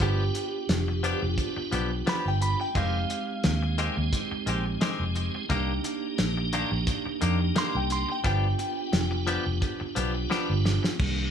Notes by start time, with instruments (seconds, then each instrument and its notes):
Already playing: tonewheel organ B3 D4 F4 G4
0.00 fingered electric bass G1, clean electric guitar F3 B3 D4 G4, kick, closed hi-hat
0.35 muted clean electric guitar stroke, closed hi-hat
0.69 fingered electric bass F1, muted clean electric guitar stroke, snare, closed hi-hat
0.88 muted clean electric guitar stroke
1.03 clean electric guitar F3 B3 D4 G4, closed hi-hat
1.22 fingered electric bass F1, muted clean electric guitar stroke
1.38 kick, closed hi-hat
1.57 muted clean electric guitar stroke, muted fingered electric bass stroke
1.72 fingered electric bass B1, clean electric guitar F3 B3 D4 G4, closed hi-hat
2.07 clean electric guitar F3 B3 D4 G4 B5, snare, closed hi-hat
2.26 fingered electric bass G1, clean electric guitar G5
2.41 clean electric guitar B5, muted clean electric guitar stroke, closed hi-hat
2.60 clean electric guitar G5, muted clean electric guitar stroke
2.73 fingered electric bass F1, clean electric guitar D#3 G#3 C4 G4 F5, tonewheel organ G#3 C4 D#4 G4, kick, closed hi-hat
3.10 muted clean electric guitar stroke, closed hi-hat
3.44 fingered electric bass D#2, muted clean electric guitar stroke, snare, closed hi-hat
3.63 muted clean electric guitar stroke
3.78 clean electric guitar D#3 G#3 C4 G4, closed hi-hat
3.97 fingered electric bass D#2, muted clean electric guitar stroke
4.13 kick, closed hi-hat
4.31 muted clean electric guitar stroke, muted fingered electric bass stroke
4.46 fingered electric bass A#1, clean electric guitar D#3 G#3 C4 G4, closed hi-hat
4.66 muted clean electric guitar stroke
4.81 clean electric guitar D#3 G#3 C4 G4, snare, closed hi-hat
5.00 fingered electric bass F1
5.15 muted clean electric guitar stroke, closed hi-hat
5.35 muted clean electric guitar stroke
5.49 fingered electric bass C2, clean electric guitar D#3 A#3 D4 G4, tonewheel organ A#3 D4 D#4 G4, kick, closed hi-hat
5.84 muted clean electric guitar stroke, closed hi-hat
6.18 fingered electric bass A#1, muted clean electric guitar stroke, snare, closed hi-hat
6.37 muted clean electric guitar stroke
6.53 clean electric guitar D#3 A#3 D4 G4, closed hi-hat
6.72 fingered electric bass A#1, muted clean electric guitar stroke
6.87 kick, closed hi-hat
7.06 muted clean electric guitar stroke, muted fingered electric bass stroke
7.21 fingered electric bass F2, clean electric guitar D#3 A#3 D4 G4, closed hi-hat
7.40 muted clean electric guitar stroke
7.56 clean electric guitar D#3 A#3 D4 G4 C6, snare, closed hi-hat
7.75 fingered electric bass C2, clean electric guitar G5
7.90 clean electric guitar C6, muted clean electric guitar stroke, closed hi-hat
8.09 clean electric guitar G5, muted clean electric guitar stroke
8.23 fingered electric bass G1, clean electric guitar F3 B3 D4 G4 G5, tonewheel organ B3 D4 F4 G4, kick, closed hi-hat
8.59 muted clean electric guitar stroke, closed hi-hat
8.93 fingered electric bass F1, muted clean electric guitar stroke, snare, closed hi-hat
9.11 muted clean electric guitar stroke
9.27 clean electric guitar F3 B3 D4 G4, closed hi-hat
9.46 fingered electric bass F1, muted clean electric guitar stroke
9.62 kick, closed hi-hat
9.80 muted clean electric guitar stroke, muted fingered electric bass stroke
9.95 fingered electric bass B1, clean electric guitar F3 B3 D4 G4, closed hi-hat
10.14 muted clean electric guitar stroke
10.30 clean electric guitar F3 B3 D4 G4, snare
10.50 fingered electric bass G1
10.65 muted clean electric guitar stroke, snare
10.83 muted clean electric guitar stroke, snare
10.97 fingered electric bass C2, tonewheel organ D#3 A#3 D4 G4, kick, crash